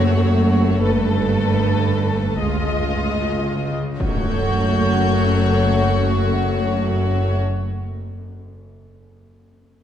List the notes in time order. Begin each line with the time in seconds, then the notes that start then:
Already playing: F#1 F#2 A3 F#4 C#5
0.83 G1 G2 A4 B4
2.41 C#2 G#3 F4 D#5
3.98 F#1 F#2 A3 F#4 C#5 C#6 G6, impact